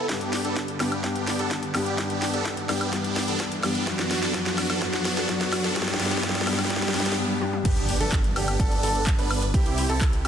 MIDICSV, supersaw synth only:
0, 0, Header, 1, 2, 480
1, 0, Start_track
1, 0, Key_signature, 1, "major"
1, 0, Tempo, 472441
1, 93, Time_signature, 4, 2, 24, 8
1, 10442, End_track
2, 0, Start_track
2, 0, Title_t, "Supersaw synth"
2, 0, Program_c, 0, 81
2, 92, Note_on_c, 0, 59, 77
2, 92, Note_on_c, 0, 62, 72
2, 92, Note_on_c, 0, 67, 85
2, 424, Note_off_c, 0, 59, 0
2, 424, Note_off_c, 0, 62, 0
2, 424, Note_off_c, 0, 67, 0
2, 452, Note_on_c, 0, 62, 81
2, 452, Note_on_c, 0, 69, 100
2, 453, Note_on_c, 0, 59, 89
2, 612, Note_off_c, 0, 59, 0
2, 612, Note_off_c, 0, 62, 0
2, 612, Note_off_c, 0, 69, 0
2, 813, Note_on_c, 0, 59, 79
2, 813, Note_on_c, 0, 62, 72
2, 813, Note_on_c, 0, 67, 83
2, 1024, Note_off_c, 0, 59, 0
2, 1024, Note_off_c, 0, 62, 0
2, 1024, Note_off_c, 0, 67, 0
2, 1052, Note_on_c, 0, 59, 79
2, 1053, Note_on_c, 0, 62, 72
2, 1053, Note_on_c, 0, 67, 88
2, 1384, Note_off_c, 0, 59, 0
2, 1384, Note_off_c, 0, 62, 0
2, 1384, Note_off_c, 0, 67, 0
2, 1413, Note_on_c, 0, 59, 90
2, 1413, Note_on_c, 0, 62, 84
2, 1413, Note_on_c, 0, 69, 102
2, 1572, Note_off_c, 0, 59, 0
2, 1572, Note_off_c, 0, 62, 0
2, 1572, Note_off_c, 0, 69, 0
2, 1773, Note_on_c, 0, 59, 79
2, 1773, Note_on_c, 0, 62, 73
2, 1773, Note_on_c, 0, 67, 87
2, 1984, Note_off_c, 0, 59, 0
2, 1984, Note_off_c, 0, 62, 0
2, 1984, Note_off_c, 0, 67, 0
2, 2012, Note_on_c, 0, 59, 80
2, 2012, Note_on_c, 0, 62, 74
2, 2012, Note_on_c, 0, 67, 88
2, 2344, Note_off_c, 0, 59, 0
2, 2344, Note_off_c, 0, 62, 0
2, 2344, Note_off_c, 0, 67, 0
2, 2371, Note_on_c, 0, 59, 92
2, 2371, Note_on_c, 0, 62, 86
2, 2371, Note_on_c, 0, 69, 104
2, 2531, Note_off_c, 0, 59, 0
2, 2531, Note_off_c, 0, 62, 0
2, 2531, Note_off_c, 0, 69, 0
2, 2732, Note_on_c, 0, 59, 82
2, 2732, Note_on_c, 0, 62, 73
2, 2732, Note_on_c, 0, 67, 89
2, 2944, Note_off_c, 0, 59, 0
2, 2944, Note_off_c, 0, 62, 0
2, 2944, Note_off_c, 0, 67, 0
2, 2971, Note_on_c, 0, 59, 81
2, 2971, Note_on_c, 0, 67, 89
2, 2972, Note_on_c, 0, 62, 73
2, 3303, Note_off_c, 0, 59, 0
2, 3303, Note_off_c, 0, 67, 0
2, 3304, Note_off_c, 0, 62, 0
2, 3332, Note_on_c, 0, 59, 94
2, 3332, Note_on_c, 0, 62, 88
2, 3332, Note_on_c, 0, 69, 102
2, 3492, Note_off_c, 0, 59, 0
2, 3492, Note_off_c, 0, 62, 0
2, 3492, Note_off_c, 0, 69, 0
2, 3692, Note_on_c, 0, 59, 81
2, 3692, Note_on_c, 0, 62, 76
2, 3692, Note_on_c, 0, 67, 88
2, 3903, Note_off_c, 0, 59, 0
2, 3904, Note_off_c, 0, 62, 0
2, 3904, Note_off_c, 0, 67, 0
2, 3932, Note_on_c, 0, 62, 79
2, 3933, Note_on_c, 0, 59, 82
2, 3933, Note_on_c, 0, 66, 91
2, 4264, Note_off_c, 0, 59, 0
2, 4264, Note_off_c, 0, 62, 0
2, 4264, Note_off_c, 0, 66, 0
2, 4292, Note_on_c, 0, 59, 98
2, 4292, Note_on_c, 0, 62, 87
2, 4292, Note_on_c, 0, 69, 108
2, 4393, Note_off_c, 0, 59, 0
2, 4393, Note_off_c, 0, 62, 0
2, 4393, Note_off_c, 0, 69, 0
2, 4413, Note_on_c, 0, 59, 86
2, 4413, Note_on_c, 0, 62, 78
2, 4414, Note_on_c, 0, 66, 96
2, 4744, Note_off_c, 0, 59, 0
2, 4744, Note_off_c, 0, 62, 0
2, 4745, Note_off_c, 0, 66, 0
2, 4773, Note_on_c, 0, 62, 91
2, 4773, Note_on_c, 0, 69, 113
2, 4774, Note_on_c, 0, 59, 100
2, 4874, Note_off_c, 0, 59, 0
2, 4874, Note_off_c, 0, 62, 0
2, 4874, Note_off_c, 0, 69, 0
2, 4894, Note_on_c, 0, 59, 84
2, 4894, Note_on_c, 0, 62, 76
2, 4895, Note_on_c, 0, 66, 92
2, 5225, Note_off_c, 0, 59, 0
2, 5225, Note_off_c, 0, 62, 0
2, 5225, Note_off_c, 0, 66, 0
2, 5253, Note_on_c, 0, 59, 99
2, 5253, Note_on_c, 0, 62, 91
2, 5253, Note_on_c, 0, 69, 107
2, 5354, Note_off_c, 0, 59, 0
2, 5354, Note_off_c, 0, 62, 0
2, 5354, Note_off_c, 0, 69, 0
2, 5373, Note_on_c, 0, 59, 88
2, 5373, Note_on_c, 0, 66, 99
2, 5374, Note_on_c, 0, 62, 79
2, 5704, Note_off_c, 0, 66, 0
2, 5705, Note_off_c, 0, 59, 0
2, 5705, Note_off_c, 0, 62, 0
2, 5734, Note_on_c, 0, 59, 104
2, 5734, Note_on_c, 0, 62, 94
2, 5734, Note_on_c, 0, 69, 114
2, 5834, Note_off_c, 0, 59, 0
2, 5834, Note_off_c, 0, 62, 0
2, 5834, Note_off_c, 0, 69, 0
2, 5853, Note_on_c, 0, 59, 85
2, 5853, Note_on_c, 0, 62, 79
2, 5854, Note_on_c, 0, 67, 96
2, 6074, Note_off_c, 0, 59, 0
2, 6074, Note_off_c, 0, 62, 0
2, 6074, Note_off_c, 0, 67, 0
2, 6094, Note_on_c, 0, 59, 83
2, 6094, Note_on_c, 0, 62, 76
2, 6094, Note_on_c, 0, 67, 95
2, 6314, Note_off_c, 0, 62, 0
2, 6314, Note_off_c, 0, 67, 0
2, 6315, Note_off_c, 0, 59, 0
2, 6334, Note_on_c, 0, 59, 87
2, 6334, Note_on_c, 0, 62, 81
2, 6334, Note_on_c, 0, 67, 99
2, 6554, Note_off_c, 0, 62, 0
2, 6554, Note_off_c, 0, 67, 0
2, 6555, Note_off_c, 0, 59, 0
2, 6572, Note_on_c, 0, 59, 85
2, 6572, Note_on_c, 0, 62, 76
2, 6572, Note_on_c, 0, 67, 96
2, 6793, Note_off_c, 0, 59, 0
2, 6794, Note_off_c, 0, 62, 0
2, 6794, Note_off_c, 0, 67, 0
2, 6811, Note_on_c, 0, 62, 77
2, 6811, Note_on_c, 0, 67, 98
2, 6812, Note_on_c, 0, 59, 89
2, 7033, Note_off_c, 0, 59, 0
2, 7033, Note_off_c, 0, 62, 0
2, 7033, Note_off_c, 0, 67, 0
2, 7052, Note_on_c, 0, 59, 87
2, 7052, Note_on_c, 0, 62, 81
2, 7052, Note_on_c, 0, 67, 93
2, 7273, Note_off_c, 0, 62, 0
2, 7273, Note_off_c, 0, 67, 0
2, 7274, Note_off_c, 0, 59, 0
2, 7773, Note_on_c, 0, 59, 87
2, 7773, Note_on_c, 0, 62, 77
2, 7774, Note_on_c, 0, 67, 93
2, 8104, Note_off_c, 0, 59, 0
2, 8104, Note_off_c, 0, 62, 0
2, 8105, Note_off_c, 0, 67, 0
2, 8133, Note_on_c, 0, 59, 98
2, 8133, Note_on_c, 0, 62, 91
2, 8133, Note_on_c, 0, 69, 105
2, 8292, Note_off_c, 0, 59, 0
2, 8292, Note_off_c, 0, 62, 0
2, 8292, Note_off_c, 0, 69, 0
2, 8492, Note_on_c, 0, 59, 84
2, 8492, Note_on_c, 0, 62, 77
2, 8492, Note_on_c, 0, 67, 94
2, 8704, Note_off_c, 0, 59, 0
2, 8704, Note_off_c, 0, 62, 0
2, 8704, Note_off_c, 0, 67, 0
2, 8732, Note_on_c, 0, 59, 99
2, 8732, Note_on_c, 0, 62, 90
2, 8732, Note_on_c, 0, 69, 110
2, 8944, Note_off_c, 0, 59, 0
2, 8944, Note_off_c, 0, 62, 0
2, 8944, Note_off_c, 0, 69, 0
2, 8973, Note_on_c, 0, 62, 90
2, 8973, Note_on_c, 0, 69, 107
2, 8974, Note_on_c, 0, 59, 96
2, 9228, Note_off_c, 0, 59, 0
2, 9228, Note_off_c, 0, 62, 0
2, 9228, Note_off_c, 0, 69, 0
2, 9334, Note_on_c, 0, 59, 91
2, 9334, Note_on_c, 0, 62, 81
2, 9334, Note_on_c, 0, 71, 100
2, 9588, Note_off_c, 0, 59, 0
2, 9588, Note_off_c, 0, 62, 0
2, 9588, Note_off_c, 0, 71, 0
2, 9692, Note_on_c, 0, 60, 86
2, 9693, Note_on_c, 0, 64, 76
2, 9693, Note_on_c, 0, 67, 93
2, 10024, Note_off_c, 0, 60, 0
2, 10024, Note_off_c, 0, 64, 0
2, 10024, Note_off_c, 0, 67, 0
2, 10052, Note_on_c, 0, 60, 98
2, 10052, Note_on_c, 0, 64, 92
2, 10052, Note_on_c, 0, 69, 109
2, 10212, Note_off_c, 0, 60, 0
2, 10212, Note_off_c, 0, 64, 0
2, 10212, Note_off_c, 0, 69, 0
2, 10412, Note_on_c, 0, 60, 86
2, 10442, Note_off_c, 0, 60, 0
2, 10442, End_track
0, 0, End_of_file